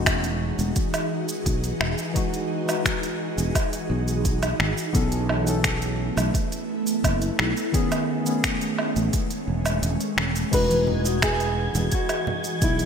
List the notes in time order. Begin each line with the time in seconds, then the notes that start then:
Already playing: E1 E3 G#3 D#4 F#4 G#4
0.06 finger snap, kick, closed hi-hat, low woodblock, shaker
0.24 closed hi-hat, shaker
0.59 E1, closed hi-hat, shaker
0.76 kick, closed hi-hat, shaker
0.94 closed hi-hat, low woodblock, shaker
1.29 closed hi-hat, shaker
1.46 B1, kick, closed hi-hat, shaker
1.64 closed hi-hat, shaker
1.80 E1, finger snap, low woodblock
1.98 shaker
2.14 E3 G#3 D#4 F#4, kick, closed hi-hat, shaker
2.34 closed hi-hat, shaker
2.66 E3 G#3 D#4, closed hi-hat, low woodblock, shaker
2.71 F#4
2.85 finger snap, kick, closed hi-hat, shaker
3.03 closed hi-hat, shaker
3.38 E1, closed hi-hat, shaker
3.55 kick, closed hi-hat, low woodblock, shaker
3.73 closed hi-hat, shaker
3.90 B1
4.08 closed hi-hat, shaker
4.25 kick, closed hi-hat, shaker
4.43 closed hi-hat, low woodblock, shaker
4.59 G#1, finger snap
4.78 shaker
4.93 B1 E3 A3 B3 C#4 E4 A4, kick, closed hi-hat, shaker
5.12 closed hi-hat, shaker
5.29 low woodblock
5.44 E3 B3 C#4, closed hi-hat, shaker
5.50 A4
5.64 finger snap, kick, closed hi-hat, shaker
5.82 closed hi-hat, shaker
6.17 B1, closed hi-hat, low woodblock, shaker
6.34 kick, closed hi-hat, shaker
6.52 closed hi-hat, shaker
6.87 closed hi-hat, shaker
7.04 F#1, kick, closed hi-hat, low woodblock, shaker
7.22 closed hi-hat, shaker
7.39 B1, finger snap
7.57 shaker
7.72 D#3 G#3 B3 C#4 G#4, kick, closed hi-hat, shaker
7.92 closed hi-hat, low woodblock, shaker
8.25 D#3 B3 C#4, closed hi-hat, shaker
8.30 G#4
8.44 finger snap, kick, closed hi-hat, shaker
8.61 closed hi-hat, shaker
8.78 low woodblock
8.96 A1, closed hi-hat, shaker
9.13 kick, closed hi-hat, shaker
9.31 closed hi-hat, shaker
9.47 E1
9.66 closed hi-hat, low woodblock, shaker
9.82 E1, closed hi-hat, shaker
10.01 closed hi-hat, shaker
10.17 E1, finger snap
10.36 closed hi-hat, shaker
10.51 E1 E3 G#3 D#4 F#4 G#4 B4 D#5 G#6, kick, closed hi-hat, crash, shaker
10.70 closed hi-hat, high conga, shaker
10.87 low conga
11.03 E3 G#3 D#5, closed hi-hat, shaker
11.08 F#4
11.22 G#4, finger snap, kick, closed hi-hat, low woodblock, shaker
11.40 closed hi-hat, shaker
11.75 E1, closed hi-hat, low conga, shaker
11.92 F#4, kick, closed hi-hat, shaker
12.09 closed hi-hat, low woodblock, shaker
12.27 low conga
12.44 closed hi-hat, shaker
12.62 B1 E4, kick, closed hi-hat, shaker
12.79 closed hi-hat, shaker